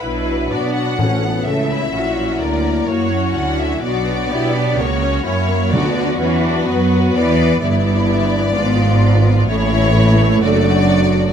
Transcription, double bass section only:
\new Staff \with { instrumentName = "Double bass section" } { \clef bass \time 4/4 \key b \minor \tempo 4 = 127 b,,4 b,4 a,,4 cis,4 | ais,,4 d,4 fis,4 d,4 | b,,4 b,4 cis,4 fis,4 | d,4 e,4 fis,4 e,4 |
\key d \major g,,2 gis,,2 | a,,2 fis,,2 | }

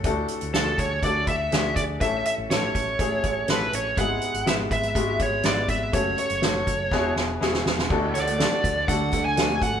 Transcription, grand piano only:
<<
  \new Staff \with { instrumentName = "Grand piano" } { \time 4/4 \key d \lydian \tempo 4 = 122 <a d' fis' a'>8 r8 <a d' fis' gis' a'>8 r8 <a d' fis' a'>8 r8 <a d' fis' gis'>8 r8 | <a cis' e' a'>8 r8 <a cis' e' a'>8 r8 <a cis' e' gis'>8 r8 <a cis' e' a'>8 r8 | <gis b e' gis'>8 r8 <gis b e' b'>8 r8 <gis b e' fis'>8 r8 <gis b e' b'>8 r8 | <a cis' fis' a'>8 r8 <a cis' fis' a'>8 r8 <b e' fis' gis'>8 r8 <b e' fis' gis'>8 r8 |
<a d' fis' a'>8 r8 <a d' fis' a'>8 r8 <a d' fis' a'>8 r8 <a d' fis' a'>8 r8 | }
  \new Staff \with { instrumentName = "Grand piano" } { \clef bass \time 4/4 \key d \lydian a,4. r2 r8 | <a, e>4. r2 r8 | gis,4. r2 r8 | cis4. r8 b,4. r8 |
a,4. r2 r8 | }
>>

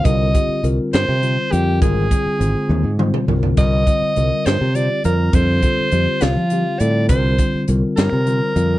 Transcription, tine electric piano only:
\new Staff \with { instrumentName = "Tine electric piano" } { \time 6/8 \key c \minor \tempo 4. = 68 <d g c' f' bes'>8 <d g c' f' g'>8 <d g c' f' bes'>4 <d g c' f' c''>8 <d g c' f' bes'>8 | <d g c' f' bes'>8 <d g c' f' aes'>8 <d aes c' f' c''>4 <d g c' f' c''>8 <d g c' f' bes'>8 | <d g c' f' bes'>8 <d g c' f' c''>8 <d g c' f' bes'>4 <d g c' f' g'>8 <d g c' f' bes'>8 | <d g c' f' a'>8 <d g c' f' a'>8 <d g c' f' g'>4 <d g c' f' g'>8 <d g c' f' a'>8 |
<d g c' f' bes'>8 <d g c' f' c''>8 <d g c' f' bes'>4 <d g c' f' c''>8 <d g c' f' bes'>8 | }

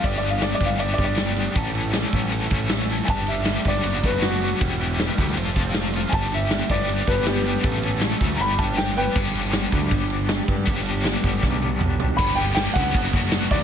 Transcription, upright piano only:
\new Staff \with { instrumentName = "Upright piano" } { \time 4/4 \key g \lydian \tempo 4 = 158 \tuplet 3/2 { d''8 d''8 f''8 d''8 d''8 f''8 d''8 d''8 d''8~ } d''4 | r1 | <aes'' a''>8 e''4 d''4 b'8 fis'4~ | fis'4 r2. |
<aes'' a''>8 e''4 d''4 b'8 <b g'>4~ | <b g'>4 r4 <bes'' b''>8 a''8 g''8 <b' g''>8 | r1 | r1 |
b''8 g''8 g''8 fis''2 d''8 | }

